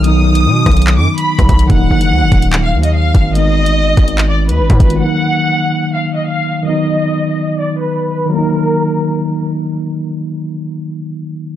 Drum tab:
HH |x-----x-----xxxx------x---x-x-x-|x-----x-----x-x-------x-----x---|x-----x-----x-x-------x---x-x-x-|--------------------------------|
CP |----------------x---------------|----------------x---------------|----------------x---------------|--------------------------------|
SD |------------r-------------r-----|--------------------------------|--------------------------------|--------------------------------|
BD |------------o-------------o-o---|o-----------o---------------o---|------------o-------------o-o---|--------------------------------|

HH |--------------------------------|--------------------------------|--------------------------------|
CP |--------------------------------|--------------------------------|--------------------------------|
SD |--------------------------------|--------------------------------|--------------------------------|
BD |--------------------------------|--------------------------------|--------------------------------|